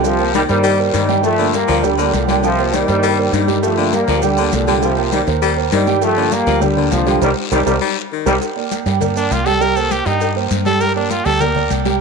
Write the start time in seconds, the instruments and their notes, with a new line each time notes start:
Already playing: fingered electric bass C2, baritone saxophone D3
0.04 trombone section C3 F3, grand piano G3 G4 G5, cowbell, high conga, low agogo, long guiro, maracas
0.19 grand piano A#3 A#4 C5, high conga, low agogo
0.34 baritone saxophone D#3, trombone section D#3 G3, cowbell, high conga, short guiro, maracas
0.48 fingered electric bass G2, trombone section D#3 G3, grand piano A#3 A#4 C5, cowbell, low agogo, short guiro, maracas
0.64 baritone saxophone G3, cowbell, low agogo, long guiro, maracas
0.79 grand piano A#3 A#4 C5
0.93 fingered electric bass G2, baritone saxophone D#3, trombone section D#3 G3, cowbell, high conga, low agogo, short guiro, maracas
1.09 grand piano G3 G4 G5, high conga, short guiro, maracas
1.23 trombone section F3 A3, cowbell, high conga, low agogo, long guiro, maracas
1.38 baritone saxophone D3, grand piano A#3 A#4 D5
1.53 trombone section G3 A#3, cowbell, high conga, low agogo, short guiro, maracas
1.68 fingered electric bass D2, baritone saxophone F3, grand piano A#3 A#4 D5, cowbell, low agogo, short guiro, maracas
1.83 trombone section D3 G3, grand piano G3 G4 G5, cowbell, high conga, low conga, low agogo, long guiro, maracas
1.98 baritone saxophone D3, grand piano A#3 A#4 D5, high conga, maracas
2.13 fingered electric bass C2, trombone section A#2 D3, cowbell, high conga, low agogo, short guiro, maracas
2.28 baritone saxophone D3, grand piano G3 G4 G5, cowbell, high conga, short guiro, maracas
2.43 trombone section C3 F3, grand piano G3 G4 G5, cowbell, low agogo, long guiro, maracas
2.58 grand piano A#3 A#4 C5, low agogo
2.73 baritone saxophone D#3, trombone section D#3 G3, cowbell, high conga, short guiro, maracas
2.87 fingered electric bass G2, trombone section D#3 G3, grand piano A#3 A#4 C5, cowbell, low agogo, short guiro, maracas
3.03 baritone saxophone G3, cowbell, low agogo, long guiro, maracas
3.18 grand piano A#3 A#4 C5
3.32 fingered electric bass G2, baritone saxophone D#3, trombone section D#3 G3, cowbell, high conga, low agogo, short guiro, maracas
3.47 grand piano G3 G4 G5, high conga, short guiro, maracas
3.63 trombone section F3 A3, cowbell, low agogo, long guiro, maracas
3.77 baritone saxophone D3, grand piano A#3 A#4 D5, high conga
3.92 trombone section G3 A#3, cowbell, high conga, low agogo, short guiro, maracas
4.07 fingered electric bass D2, baritone saxophone F3, grand piano A#3 A#4 D5, cowbell, low agogo, short guiro, maracas
4.22 trombone section D3 G3, grand piano G3 G4 G5, cowbell, high conga, low conga, low agogo, long guiro, maracas
4.37 baritone saxophone D3, grand piano A#3 A#4 D5, maracas
4.52 fingered electric bass C2, trombone section A#2 D3, cowbell, high conga, low timbale, low agogo, short guiro, maracas
4.67 baritone saxophone D3, grand piano G3 G4 G5, cowbell, high conga, short guiro, maracas
4.82 trombone section C3 F3, grand piano G3 G4 G5, cowbell, high conga, low agogo, long guiro, maracas
4.97 grand piano A#3 A#4 C5, high conga, low agogo
5.12 baritone saxophone D#3, trombone section D#3 G3, cowbell, high conga, short guiro, maracas
5.27 fingered electric bass D#2, grand piano A#3 A#4 C5, cowbell, low agogo, short guiro, maracas
5.42 baritone saxophone G3, cowbell, low agogo, long guiro, maracas
5.57 grand piano A#3 A#4 C5, high conga
5.72 fingered electric bass G2, baritone saxophone D#3, trombone section D#3 G3, cowbell, high conga, low agogo, short guiro, maracas
5.87 grand piano G3 G4 G5, high conga, short guiro, maracas
6.01 trombone section F3 A3, cowbell, high conga, low agogo, long guiro, maracas
6.17 baritone saxophone D3, grand piano A#3 A#4 D5, high conga
6.31 trombone section G3 A#3, cowbell, high conga, low agogo, short guiro, maracas
6.46 fingered electric bass D2, baritone saxophone F3, grand piano A#3 A#4 D5, cowbell, low agogo, short guiro, maracas
6.61 trombone section D3 G3, grand piano G3 G4 G5, cowbell, high conga, low conga, low agogo, long guiro, maracas
6.76 baritone saxophone D3, grand piano A#3 A#4 D5, high conga, low conga
6.91 fingered electric bass C2, trombone section D3 F3, cowbell, high conga, low timbale, low agogo, short guiro, maracas
7.06 baritone saxophone D3, grand piano G3 G4 G5, cowbell, high conga, short guiro, maracas
7.21 fingered electric bass C2, trombone section C3 D#3 G3, grand piano G4 A#4 C5, cowbell, high conga, high timbale, long guiro, maracas
7.52 fingered electric bass C2, trombone section C3 D#3 G3, baritone saxophone D#3, grand piano G4 A#4 C5, cowbell, high conga, high timbale, long guiro, maracas
7.66 fingered electric bass C2, trombone section C3 D#3 G3, grand piano G4 A#4 C5, cowbell, high conga, high timbale, long guiro, maracas
7.81 baritone saxophone G3
8.12 baritone saxophone D#3
8.26 fingered electric bass C2, trombone section C3 D#3 G3, grand piano G4 A#4 C5, cowbell, high conga, high timbale, long guiro, maracas
8.41 cowbell, high conga, low agogo, long guiro, maracas
8.56 grand piano A#3 A#4 D5, high conga
8.71 cowbell, high conga, low agogo, short guiro, maracas
8.86 fingered electric bass G2, grand piano G3 G4 G5, cowbell, low agogo, short guiro, maracas
9.01 grand piano A#3 A#4 D5, cowbell, high conga, low conga, low agogo, long guiro, maracas
9.16 grand piano A#3 A#4 D5, trumpet D4, maracas
9.31 fingered electric bass C2, trumpet F4, cowbell, high conga, low agogo, short guiro, maracas
9.46 grand piano G3 G4 G5, trumpet A4, cowbell, high conga, short guiro, maracas
9.61 grand piano G3 G4 G5, trumpet A#4, cowbell, low agogo, long guiro, maracas
9.75 grand piano A#3 A#4 C5, trumpet A4, high conga, low agogo, maracas
9.91 trumpet G4, cowbell, high conga, short guiro, maracas
10.05 fingered electric bass G2, grand piano G3 G4 G5, trumpet D#4, cowbell, low agogo, short guiro, maracas
10.20 cowbell, high conga, low agogo, long guiro, maracas
10.35 grand piano A#3 A#4 C5, high conga
10.51 fingered electric bass G2, cowbell, high conga, low agogo, short guiro, maracas
10.66 grand piano G3 G4 G5, trumpet A4, high conga, short guiro, maracas
10.80 trumpet A#4, cowbell, low agogo, long guiro, maracas
10.96 grand piano A#3 A#4 D5, trumpet D4, high conga
11.10 trumpet F4, cowbell, high conga, low agogo, short guiro, maracas
11.25 fingered electric bass D2, grand piano G3 G4 G5, trumpet A4, cowbell, high conga, low agogo, short guiro, maracas
11.40 grand piano A#3 A#4 D5, trumpet A#4, cowbell, high conga, low conga, low agogo, long guiro, maracas
11.55 grand piano A#3 A#4 D5, high conga, low conga
11.70 fingered electric bass C2, cowbell, high conga, low agogo, short guiro, maracas
11.85 grand piano G3 G4 G5, cowbell, high conga, short guiro, maracas